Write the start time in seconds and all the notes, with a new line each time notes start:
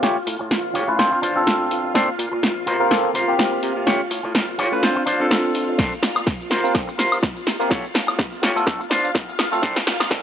Already playing: F4 F5
0.02 A3 C#4 F4 G4 C#5, snare
0.16 muted fingered electric bass stroke
0.26 A2, muted clean electric guitar stroke, open hi-hat
0.39 A2, muted clean electric guitar stroke
0.50 A1, muted clean electric guitar stroke, snare
0.74 A2 F4 G4 C#5, open hi-hat
0.88 A2 A3 C#4 F4 B4
0.98 D2 C4 D4 F4 C5, muted clean electric guitar stroke, snare
1.11 muted clean electric guitar stroke
1.22 A1 D4 F4 C5, open hi-hat
1.35 A1 C4 D4 F4 A4
1.47 D2, snare
1.59 muted clean electric guitar stroke
1.71 A1, open hi-hat
1.84 A1, muted clean electric guitar stroke
1.94 A#1 A#3 C4 D4 A4 C5, snare
2.18 A#2, muted clean electric guitar stroke, open hi-hat
2.32 A#2, muted clean electric guitar stroke
2.43 A#1, muted clean electric guitar stroke, snare
2.66 C3 F4 A#4 C5, open hi-hat
2.80 C3 A#3 C4 F4 A#4
2.90 C2 A#3 C4 F4 A4, snare
3.04 muted clean electric guitar stroke
3.14 C3 F4 A#4 C5, open hi-hat
3.27 C3 A#3 C4 F4 G4
3.39 C2, snare
3.52 muted clean electric guitar stroke
3.63 C3, open hi-hat
3.75 C3, muted clean electric guitar stroke
3.86 A1 A3 C#4 F4 G4 C#5, snare
4.10 A2, muted clean electric guitar stroke, open hi-hat
4.23 A2, muted clean electric guitar stroke
4.34 A1, muted clean electric guitar stroke, snare
4.58 A2 F4 G4 C#5, open hi-hat
4.72 A2 A3 C#4 F4 B4
4.82 D2 C4 D4 F4 C5, muted clean electric guitar stroke, snare
4.95 muted clean electric guitar stroke
5.06 A1 D4 F4 C5, open hi-hat
5.20 A1 C4 D4 F4 A4
5.31 D2, snare
5.43 muted clean electric guitar stroke
5.55 A1, open hi-hat
5.67 A1, muted clean electric guitar stroke
5.78 A#1 D4 F4 A4 C5 F5, kick, snare, shaker
5.93 shaker
6.02 A#2, muted clean electric guitar stroke, snare, open hi-hat, shaker
6.15 A#2, muted clean electric guitar stroke, high woodblock, shaker
6.26 muted clean electric guitar stroke, kick, snare, shaker
6.41 shaker
6.50 C3 F4 A#4 C5, snare, open hi-hat, shaker
6.64 C3 A#3 C4 F4 A#4, shaker
6.75 kick, snare, high woodblock, shaker
6.87 muted clean electric guitar stroke, shaker
6.98 C3 F4 A#4 C5, snare, open hi-hat, shaker
7.12 C3, high woodblock, shaker
7.23 kick, snare, shaker
7.35 muted clean electric guitar stroke, shaker
7.47 C3, snare, open hi-hat, shaker
7.59 C3 A#3 C4 F4 A#4, muted clean electric guitar stroke, shaker
7.70 A3 B3 C#4 F4 G4 A4 C#5, kick, snare, shaker
7.85 shaker
7.94 A2, muted clean electric guitar stroke, snare, open hi-hat, shaker
8.07 A2, muted clean electric guitar stroke, high woodblock, shaker
8.18 muted clean electric guitar stroke, kick, snare, shaker
8.33 shaker
8.42 A2 F4 G4 C#5, snare, open hi-hat, shaker
8.56 A2 A3 B3 F4 A4, shaker
8.67 C4 D4 A4, kick, snare, shaker
8.79 muted clean electric guitar stroke, shaker
8.90 A1 D4 F4 C5, snare, open hi-hat, shaker
9.04 A1, shaker
9.15 kick, snare, shaker
9.27 muted clean electric guitar stroke, shaker
9.39 snare, open hi-hat, high woodblock, shaker
9.52 A1 A3 C4 F4 A4, muted clean electric guitar stroke, shaker
9.62 D4 A4 C5, kick, snare, shaker
9.76 snare, shaker
9.86 A#2, muted clean electric guitar stroke, snare, open hi-hat, shaker
10.00 A#2, muted clean electric guitar stroke, snare, high woodblock, shaker
10.10 A#3 C4 D4 A4, kick, snare, shaker